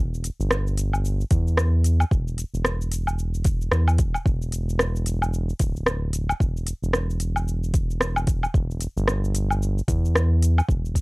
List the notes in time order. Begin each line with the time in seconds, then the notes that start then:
Already playing: E1
0.14 cabasa
0.24 closed hi-hat, cabasa
0.40 G1, cabasa
0.51 cross-stick, cabasa
0.67 cabasa
0.78 closed hi-hat, cabasa
0.93 cabasa, low woodblock
1.05 cabasa
1.21 cabasa
1.31 E2, kick, closed hi-hat, cabasa
1.48 cabasa
1.58 cross-stick, cabasa
1.84 closed hi-hat, cabasa
2.00 cabasa, low woodblock
2.11 E1, kick, cabasa
2.28 cabasa
2.38 closed hi-hat, cabasa
2.53 E1, cabasa
2.65 cross-stick, cabasa
2.81 cabasa
2.92 closed hi-hat, cabasa
3.07 cabasa, low woodblock
3.19 cabasa
3.34 cabasa
3.44 kick, closed hi-hat, cabasa
3.61 cabasa
3.72 E2, cross-stick, cabasa
3.88 cabasa, low woodblock
3.98 E1, kick, closed hi-hat, cabasa
4.14 cabasa, low woodblock
4.26 E1, kick, cabasa
4.42 cabasa
4.52 closed hi-hat, cabasa
4.69 cabasa
4.79 cross-stick, cabasa
4.96 cabasa
5.06 closed hi-hat, cabasa
5.22 cabasa, low woodblock
5.34 cabasa
5.49 cabasa
5.59 D1, kick, closed hi-hat, cabasa
5.76 cabasa
5.86 cross-stick, cabasa
6.13 closed hi-hat, cabasa
6.29 cabasa, low woodblock
6.40 E1, kick, cabasa
6.57 cabasa
6.67 closed hi-hat, cabasa
6.82 E1, cabasa
6.93 cross-stick, cabasa
7.10 cabasa
7.20 closed hi-hat, cabasa
7.36 cabasa, low woodblock
7.48 cabasa
7.64 cabasa
7.74 kick, closed hi-hat, cabasa
7.90 cabasa
8.01 cross-stick, cabasa
8.16 cabasa, low woodblock
8.27 kick, closed hi-hat, cabasa
8.43 cabasa, low woodblock
8.54 E1, kick, cabasa
8.71 cabasa
8.81 closed hi-hat, cabasa
8.96 G1, cabasa
9.08 cross-stick, cabasa
9.24 cabasa
9.35 closed hi-hat, cabasa
9.50 cabasa, low woodblock
9.63 cabasa
9.78 cabasa
9.88 E2, kick, closed hi-hat, cabasa
10.05 cabasa
10.15 cross-stick, cabasa
10.42 closed hi-hat, cabasa
10.58 cabasa, low woodblock
10.69 E1, kick, cabasa
10.86 cabasa
10.95 kick, closed hi-hat, cabasa